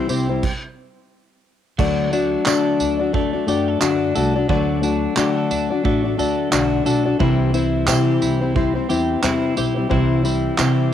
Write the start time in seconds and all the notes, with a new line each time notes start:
Already playing: G3 C4 E4
0.09 C2 G3 C4 E4 G4 C5, tambourine
0.29 G3 C4 E4 C5
0.43 kick, crash
1.78 D2 D3 F#3 A3 D4 F#4 D5, kick, crash
2.12 A3 D4 F#4 D5, tambourine
2.45 D3 A3 D4 F#4 A4 D5, clap, tambourine
2.80 D2 D4, tambourine
2.99 D4 F#4 D5
3.13 A3 D4 F#4 D5, kick
3.33 D4 F#4 D5
3.47 F#2 A3 D4 F#4 G4 D5, tambourine
3.68 A4
3.80 F#2 D3 A3 D4 F#4 D5, clap, tambourine
4.15 C2 A3 D4 F#4 A4 D5, tambourine
4.36 D4 F#4 D5
4.49 D2 D3 F#3 A3 D4 F#4 D5, kick
4.82 A3 D4 F#4 D5, tambourine
5.16 D3 A3 D4 F#4 G4 D5, clap, tambourine
5.37 A4
5.50 D2 D4, tambourine
5.71 D4 F#4 D5
5.84 A1 A3 D4 F#4 D5, kick
6.04 D4 F#4 D5
6.17 D2 A3 D4 F#4 A4 D5, tambourine
6.51 B1 D3 A3 D4 F#4 D5, clap, tambourine
6.85 B1 A3 D4 F#4 A4 D5, tambourine
7.06 D4 F#4 D5
7.19 C2 C3 E3 G3 C4 E4 C5, kick
7.53 G3 C4 E4 C5, tambourine
7.87 C3 E3 G3 C4 E4 G4 C5, clap, tambourine
8.21 C2 E4, tambourine
8.41 G3 C4 E4 C5
8.55 G3 C4 E4 C5, kick
8.75 G3 C4 E4 C5
8.89 E2 G3 C4 E4 G4 C5, tambourine
9.22 E2 C3 E3 G3 C4 E4 C5, clap, tambourine
9.56 B1 G3 C4 E4 G4 C5, tambourine
9.76 G3 C4 E4 C5
9.89 C2 C3 E3 G3 C4 E4 C5, kick
10.23 G3 C4 E4 C5, tambourine
10.57 C3 E3 G3 C4 E4 G4 C5, clap, tambourine